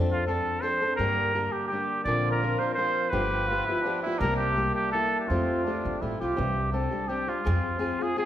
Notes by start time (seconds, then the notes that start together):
Already playing: F2 F3 C4 D4 A4
0.11 F4
0.26 F3 C4 D4 A4
0.62 F3 C4 D4 A4 C5
0.82 C4 D4 A4
0.96 G2 D3 G3 A#3 D4 A#4
1.00 G4
1.34 G3 A#3 D4 G4
1.52 G4
1.67 G4
1.72 G3 A#3 D4 G4
2.04 A#1 A#2 D3 F3 C4 D4 F4 A#4 D5
2.31 A#4
2.43 F3 C4 D4 A#4
2.59 F3 C4 D4 A#4 C5
2.74 F3 D4 C5
2.78 C4 A#4
3.10 G1 G2 D3 F3 B3 F4 G4 B4
3.47 F3 B3 F4
3.52 G4
3.65 E4 G4
3.70 F3 B3 F4
3.82 F3 B3 D4
3.87 F4 G4
4.02 E4
4.06 F3 B3 F4 G4
4.18 C2 D4 A#4
4.22 C3 G3 A#3 E4 G4
4.37 G4
4.55 G3 A#3 E4 G4
4.75 G4
4.92 G3 A#3 E4 G4 A4
5.20 G4
5.27 F2 F3 C4 F4
5.31 A3 F4 G4
5.64 A3 C4 D4 F4
5.68 G4
5.85 G1
6.01 A1 A3 C4 E4 F4 G4
6.20 C2 C4 F4 G4
6.36 C2 C3 E3 G3 C4 D4 G4
6.72 G3 C4 D4 G4 A4
6.91 G3 C4 D4 G4
7.08 G3 C4 D4 G4
7.27 G3 C4 D4 F4 G4
7.44 F2 F3 C4 F4 G#4
7.79 F3 C4 F4 G#4
8.01 C4 F4 G#4
8.16 F3 C4 F4 G#4